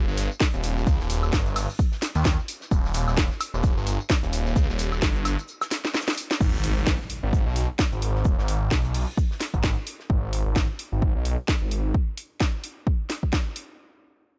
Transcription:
0.08 G1, tambourine
0.17 open hi-hat, tambourine, shaker
0.31 tambourine
0.40 kick, snare, tambourine, shaker
0.54 D#1, closed hi-hat, tambourine
0.63 open hi-hat, tambourine, shaker
0.77 snare, tambourine
0.87 C#2, kick, tambourine, shaker
1.00 D#1, snare, tambourine
1.10 open hi-hat, tambourine, shaker
1.23 tambourine, high woodblock
1.33 G1, kick, snare, tambourine, shaker
1.46 closed hi-hat, tambourine
1.56 open hi-hat, tambourine, high woodblock
1.70 tambourine
1.79 kick, tambourine, shaker
1.92 snare, tambourine
2.02 snare, open hi-hat, tambourine, shaker
2.15 D#2, closed hi-hat, tambourine
2.25 kick, snare, tambourine, shaker
2.39 tambourine
2.48 open hi-hat, tambourine, shaker
2.61 snare, tambourine
2.71 D#1, kick, tambourine, shaker
2.85 snare, tambourine
2.94 open hi-hat, tambourine, shaker
3.08 D#1, snare, tambourine, high woodblock
3.17 kick, snare, tambourine, shaker
3.31 snare, tambourine
3.40 open hi-hat, tambourine, high woodblock, shaker
3.54 D#1, tambourine
3.63 kick, tambourine, shaker
3.77 G1, tambourine
3.86 open hi-hat, tambourine, shaker
4.00 tambourine
4.10 kick, snare, tambourine, shaker
4.23 D#1, closed hi-hat, tambourine
4.33 open hi-hat, tambourine, shaker
4.46 snare, tambourine
4.56 C#2, kick, tambourine, shaker
4.69 D#1, snare, tambourine
4.79 open hi-hat, tambourine, shaker
4.92 tambourine, high woodblock
5.02 G1, kick, snare, tambourine, shaker
5.15 closed hi-hat, tambourine
5.25 snare, open hi-hat, tambourine, high woodblock, shaker
5.39 closed hi-hat, tambourine
5.48 tambourine, shaker
5.61 snare, tambourine, high woodblock, shaker
5.71 snare, open hi-hat, tambourine, shaker
5.85 snare, tambourine
5.94 snare, tambourine, shaker
6.01 snare, shaker
6.07 snare, tambourine, shaker
6.13 snare, shaker
6.17 open hi-hat, tambourine, shaker
6.31 snare, tambourine
6.41 G#1, kick, crash, impact, shaker
6.54 snare
6.64 open hi-hat, shaker
6.77 G#1, snare
6.87 kick, snare, shaker
7.01 snare
7.10 open hi-hat, shaker
7.23 G#1
7.33 kick, shaker
7.46 B1
7.56 open hi-hat, shaker
7.79 kick, snare, shaker
7.92 G#1, closed hi-hat
8.02 open hi-hat, shaker
8.15 snare
8.25 D#1, kick, shaker
8.38 G#1, snare
8.48 open hi-hat, shaker
8.71 B1, kick, snare, shaker
8.85 closed hi-hat
8.94 open hi-hat
9.17 kick, shaker
9.31 snare
9.40 snare, open hi-hat, shaker
9.54 G#1, kick, closed hi-hat
9.63 kick, snare, shaker
9.87 open hi-hat, shaker
10.00 snare
10.10 G#1, kick
10.33 open hi-hat
10.46 G#1
10.56 kick, snare
10.79 open hi-hat
10.92 G#1
11.02 kick
11.15 B1
11.25 open hi-hat
11.48 kick, snare
11.62 G#1
11.71 open hi-hat
11.94 kick
12.17 open hi-hat
12.40 kick, snare
12.64 open hi-hat
12.87 kick
13.10 snare, open hi-hat
13.23 kick
13.33 kick, snare
13.56 open hi-hat

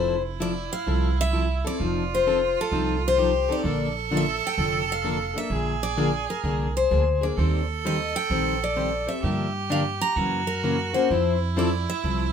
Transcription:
Already playing: F1 F3 C4 E4 A4 C5
0.40 F3 C4 E4 A4 D5
0.73 F5
0.87 C2 F3 C4 E4 A4
1.21 E5
1.32 F3 C4 E4 A4
1.65 C4 E4 A4 D5
1.78 F1 F3 C4 D#4 F4
1.82 A4
2.15 C5
2.26 F3 C4 D#4 A4
2.61 A4
2.72 C2 F3 C4 D#4 A4
3.08 C5
3.18 F3 C4 D#4 G4 A4
3.49 C4 D#4 A4 D5
3.64 A#1 D3 F3 A#3 D4 A4
4.11 D3 F3 A#3 D4 A4
4.17 E5
4.47 G5
4.57 F1 D3 F3 A#3 D4 A4
4.92 F5
5.03 D3 F3 A#3 D4 A4
5.34 A#3 D4 A4 E5
5.50 A#1 D3 F3 A#3 D4 G#4
5.83 D5
5.97 D3 F3 A#3 D4 G#4
6.30 A#4
6.44 C2 D3 F3 A#3 D4 G#4
6.77 C5
6.91 D2 D3 F3 A#3 D4 G#4
7.21 A#3 D4 G#4 D5
7.37 D#2 D#3 G3 C4 G4 A4 C5
7.85 D#3 G3 C4 G4 C5 D#5
8.16 G5
8.30 A#1 D#3 G3 C4 G4 C5
8.64 D5
8.76 D#3 G3 C4 G4 C5
9.07 C4 G4 C5 E5
9.23 G2 D3 F3 A#3 D4 G4
9.70 D3 F3 A#3 D4 G4 F5
10.01 A#5
10.16 F#2 C#3 E3 A#3 C#4 F#4
10.47 A#4
10.64 C#3 E3 A#3 C#4 F#4
10.94 A#3 C#4 F#4 C5
11.10 F2 F3 C4 E4 A4
11.57 F3 C4 E4 A4 D5
11.90 E5
12.04 C2 F3 C4 E4 A4

